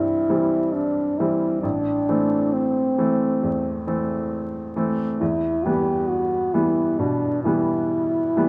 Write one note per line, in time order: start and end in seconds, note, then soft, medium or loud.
0.00 1.65 C2 soft
0.00 0.27 G2 soft
0.00 0.29 E3 soft
0.00 0.30 G3 soft
0.00 0.30 C4 soft
0.00 0.75 E4 medium
0.29 1.15 E3 soft
0.29 1.15 G3 soft
0.29 1.15 C4 soft
0.73 1.20 D4 soft
1.19 1.60 E3 soft
1.19 1.60 G3 soft
1.19 1.60 C4 soft
1.19 1.62 E4 medium
1.63 2.07 A1 soft
1.63 2.55 D4 medium
2.09 2.94 E3 soft
2.09 2.94 A3 soft
2.09 2.94 C4 soft
2.53 3.86 C4 soft
2.98 3.38 E3 soft
2.98 3.38 A3 soft
2.98 3.38 C4 soft
3.43 3.85 E2 soft
3.87 4.72 E3 soft
3.87 4.72 A3 soft
3.87 4.72 C4 soft
4.76 5.17 E3 soft
4.76 5.17 A3 soft
4.76 5.17 C4 soft
5.21 5.64 E2 soft
5.21 5.66 E4 medium
5.65 6.50 E3 soft
5.65 6.51 G3 soft
5.65 6.51 B3 soft
5.65 6.10 G4 medium
6.09 6.55 F#4 medium
6.54 6.95 E3 soft
6.54 6.96 G3 soft
6.54 6.96 B3 soft
6.54 7.01 E4 medium
6.99 7.44 B2 soft
6.99 7.44 D4 soft
7.44 8.32 E3 soft
7.44 8.32 G3 soft
7.44 8.33 B3 soft
7.44 8.49 E4 medium
8.37 8.49 E3 soft
8.37 8.49 G3 soft
8.37 8.49 B3 soft